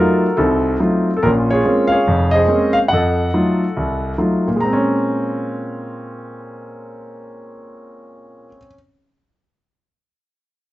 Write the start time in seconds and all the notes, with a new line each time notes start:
Already playing: F#3 A3 D#4 F4 F#4 A4 A#4
0.37 C2 C4 D#4 A4
0.80 F#3 A3 D#4 F4
1.17 A4
1.23 A#1 A#2 C#4 F4 A#4
1.51 F4 G#4 C#5
1.65 G#3 A#3 C4 C#4
1.87 F5
1.92 G#4 C#5
2.07 F1 F2
2.31 D#5
2.35 G#4 C5
2.48 G#3 A#3 C4 C#4
2.73 F5
2.88 F2 F#5
2.93 A4 D#5
3.34 F#3 A3 D#4 F4
3.77 C2
4.18 F#3 A3 D#4 F4
4.48 A#2
4.56 G#3
4.61 A#5
4.65 C4
4.73 C#4